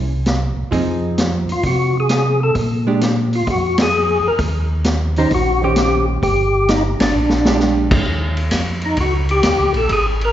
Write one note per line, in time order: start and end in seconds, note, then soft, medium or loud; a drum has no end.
0.00 0.53 C2 medium
0.26 snare medium
0.26 closed hi-hat soft
0.57 0.64 C2 soft
0.71 1.45 F2 medium
0.71 2.00 F3 medium
0.71 2.01 C4 medium
0.71 2.01 D#4 medium
0.71 2.01 G#4 medium
0.71 kick soft
0.71 open hi-hat soft
1.18 snare medium
1.18 closed hi-hat medium
1.48 1.56 F2 soft
1.48 open hi-hat soft
1.52 1.64 F4 medium
1.63 2.51 C3 medium
1.63 1.97 F#4 medium
1.63 kick soft
1.63 open hi-hat soft
2.00 2.40 G#4 medium
2.09 snare medium
2.09 closed hi-hat medium
2.43 2.56 A4 medium
2.55 3.43 A#2 medium
2.55 kick soft
2.55 open hi-hat soft
2.87 3.00 G#3 medium
2.87 3.00 D4 medium
2.87 3.01 G4 medium
3.01 snare medium
3.01 closed hi-hat medium
3.33 3.48 F4 medium
3.33 open hi-hat soft
3.47 4.20 F2 medium
3.47 3.78 F#4 medium
3.47 kick soft
3.47 open hi-hat soft
3.78 snare medium
3.78 ride medium
3.82 4.28 G#4 medium
4.24 4.31 F2 soft
4.24 4.40 A#4 medium
4.38 5.27 D#2 medium
4.38 kick soft
4.38 open hi-hat soft
4.84 snare medium
4.84 closed hi-hat medium
5.16 5.30 D#3 medium
5.16 5.31 C#4 medium
5.16 5.32 D#4 medium
5.16 5.31 G4 medium
5.16 5.31 C5 medium
5.16 open hi-hat soft
5.30 6.19 A#1 medium
5.30 kick soft
5.30 open hi-hat soft
5.34 5.62 F#4 medium
5.63 6.20 D#3 medium
5.63 6.21 C#4 medium
5.63 6.21 G4 medium
5.63 6.06 G4 medium
5.63 6.21 C5 medium
5.76 snare medium
5.76 closed hi-hat soft
6.22 6.96 G1 medium
6.22 6.70 G4 medium
6.22 kick soft
6.22 open hi-hat soft
6.68 6.83 D#4 medium
6.68 snare medium
6.68 closed hi-hat medium
6.99 7.13 G#1 medium
6.99 7.57 D4 medium
6.99 snare medium
6.99 ride medium
7.14 8.02 A#1 medium
7.29 snare medium
7.45 8.04 G#3 medium
7.45 8.04 D4 medium
7.45 8.04 G4 medium
7.45 snare medium
7.60 snare medium
7.91 kick medium
7.91 crash medium
8.05 8.50 D#2 medium
8.05 kick soft
8.37 ride soft
8.51 8.96 F2 medium
8.51 kick soft
8.51 snare medium
8.51 hi-hat pedal soft
8.51 ride medium
8.81 8.98 D#4 medium
8.81 ride soft
8.97 9.42 C#2 medium
8.97 9.14 F#4 medium
8.97 kick soft
8.97 ride medium
9.29 9.73 G4 loud
9.29 ride soft
9.43 9.58 D#2 medium
9.43 kick soft
9.43 snare medium
9.43 hi-hat pedal medium
9.43 ride medium
9.59 9.74 C#2 medium
9.74 9.88 A#1 medium
9.74 9.91 A4 medium
9.74 ride soft
9.89 10.32 G#1 medium
9.89 10.06 G#4 loud
9.89 kick soft
9.89 ride medium
10.21 10.32 A#4 medium
10.21 ride soft